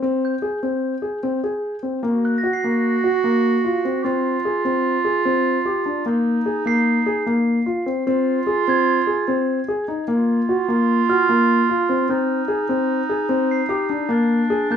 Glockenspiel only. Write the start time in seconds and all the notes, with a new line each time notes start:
0.25 G6
2.25 F#6
2.38 A#6
2.53 C7
6.67 C7
8.69 G#6
11.10 F6
13.51 C7
14.72 G6